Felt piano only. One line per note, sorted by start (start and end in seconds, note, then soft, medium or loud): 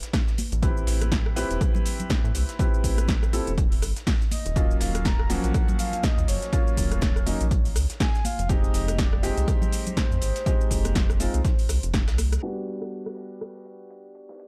0.62 1.34 C4 medium
0.62 1.34 E4 medium
0.62 1.34 G4 medium
0.62 1.34 B4 loud
1.36 2.57 C4 loud
1.36 2.57 E4 medium
1.36 2.57 G4 medium
1.36 2.57 B4 loud
2.59 3.30 C4 medium
2.59 3.30 E4 medium
2.59 3.31 G4 medium
2.59 3.31 B4 loud
3.33 3.50 C4 medium
3.33 3.50 E4 medium
3.33 3.50 G4 medium
3.33 3.50 A4 medium
4.56 5.27 F#3 medium
4.56 5.27 A#3 medium
4.56 5.27 C#4 medium
4.56 5.27 F4 loud
5.30 6.50 F3 loud
5.30 6.50 F#3 loud
5.30 6.50 A#3 medium
5.30 6.50 C#4 medium
6.52 7.24 F#3 medium
6.52 7.24 A#3 medium
6.52 7.24 C#4 medium
6.52 7.24 F4 loud
7.26 7.43 F#3 medium
7.26 7.43 A#3 medium
7.26 7.43 C#4 medium
7.26 7.43 D#4 medium
8.49 9.21 G#3 medium
8.49 9.21 C4 medium
8.49 9.21 D#4 medium
8.49 9.21 G4 loud
9.23 10.44 G#3 loud
9.23 10.44 C4 medium
9.23 10.44 D#4 medium
9.23 10.44 G4 loud
10.46 11.17 G#3 medium
10.46 11.17 C4 medium
10.46 11.17 D#4 medium
10.46 11.18 G4 loud
11.20 11.37 G#3 medium
11.20 11.37 C4 medium
11.20 11.37 D#4 medium
11.20 11.37 F4 medium
12.43 14.48 G3 medium
12.43 14.48 B3 medium
12.43 14.48 D4 medium
12.43 14.48 F#4 medium